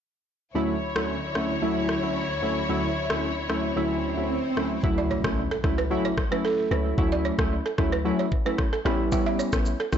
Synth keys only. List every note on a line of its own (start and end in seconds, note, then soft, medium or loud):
0.55 0.75 D2 medium
0.55 0.75 F#3 medium
0.55 0.75 A3 medium
0.55 0.75 C#4 medium
0.55 0.76 E4 loud
0.95 1.15 D2 medium
0.95 1.15 F#3 medium
0.95 1.16 A3 medium
0.95 1.16 C#4 medium
0.95 1.16 E4 medium
1.35 1.56 D2 medium
1.35 1.56 F#3 medium
1.35 1.56 A3 medium
1.35 1.56 C#4 medium
1.35 1.56 E4 medium
1.62 1.99 D2 medium
1.62 1.99 F#3 medium
1.62 2.00 A3 medium
1.62 2.00 C#4 medium
1.62 2.00 E4 loud
2.02 2.23 D2 medium
2.02 2.23 F#3 medium
2.02 2.23 A3 medium
2.02 2.23 C#4 medium
2.02 2.23 E4 medium
2.42 2.63 D2 medium
2.42 2.63 F#3 medium
2.42 2.63 A3 medium
2.42 2.63 C#4 medium
2.42 2.63 E4 medium
2.69 2.89 D2 medium
2.69 2.90 F#3 medium
2.69 2.90 A3 medium
2.69 2.90 C#4 medium
2.69 2.90 E4 loud
3.10 3.30 D2 medium
3.10 3.30 F#3 medium
3.10 3.30 A3 medium
3.10 3.30 C#4 medium
3.10 3.30 E4 medium
3.49 3.70 D2 medium
3.49 3.70 F#3 medium
3.49 3.70 A3 medium
3.49 3.70 C#4 medium
3.49 3.70 E4 medium
3.76 4.14 D2 medium
3.76 4.14 F#3 medium
3.76 4.14 A3 medium
3.76 4.14 C#4 medium
3.76 4.14 E4 loud
4.17 4.37 D2 medium
4.17 4.37 F#3 medium
4.17 4.37 A3 medium
4.17 4.37 C#4 medium
4.17 4.37 E4 medium
4.56 4.77 D2 medium
4.56 4.77 F#3 medium
4.56 4.77 A3 medium
4.56 4.77 C#4 medium
4.56 4.77 E4 medium
4.83 5.21 F#3 medium
4.83 5.21 A3 medium
4.83 5.21 C#4 medium
4.83 5.21 E4 loud
5.24 5.44 F#3 medium
5.24 5.44 A3 medium
5.24 5.44 C#4 medium
5.24 5.44 E4 medium
5.64 5.84 F#3 medium
5.64 5.84 A3 medium
5.64 5.84 C#4 medium
5.64 5.84 E4 medium
5.90 6.11 F#3 medium
5.90 6.11 A3 medium
5.90 6.11 C#4 medium
5.90 6.11 E4 loud
6.31 6.68 F#3 medium
6.31 6.68 A3 medium
6.31 6.68 C#4 medium
6.31 6.68 E4 medium
6.71 6.96 F#3 medium
6.71 6.96 A3 medium
6.71 6.96 C#4 medium
6.71 6.96 E4 medium
6.98 7.35 F#3 medium
6.98 7.35 A3 medium
6.98 7.35 C#4 medium
6.98 7.35 E4 loud
7.38 7.58 F#3 medium
7.38 7.58 A3 medium
7.38 7.58 C#4 medium
7.38 7.59 E4 medium
7.78 7.98 F#3 medium
7.78 7.99 A3 medium
7.78 7.99 C#4 medium
7.78 7.99 E4 medium
8.05 8.25 F#3 medium
8.05 8.25 A3 medium
8.05 8.25 C#4 medium
8.05 8.26 E4 loud
8.45 8.65 F#3 medium
8.45 8.66 A3 medium
8.45 8.66 C#4 medium
8.45 8.66 E4 medium
8.85 9.10 G3 medium
8.85 9.10 B3 medium
8.85 9.10 C#4 medium
8.85 9.10 E4 loud
9.12 9.49 G3 loud
9.12 9.49 B3 medium
9.12 9.50 C#4 medium
9.12 9.50 E4 loud
9.53 9.73 G3 medium
9.53 9.73 B3 medium
9.53 9.73 C#4 medium
9.53 9.73 E4 medium
9.92 9.98 G3 medium
9.92 9.98 B3 medium
9.92 9.98 C#4 medium
9.92 9.98 E4 medium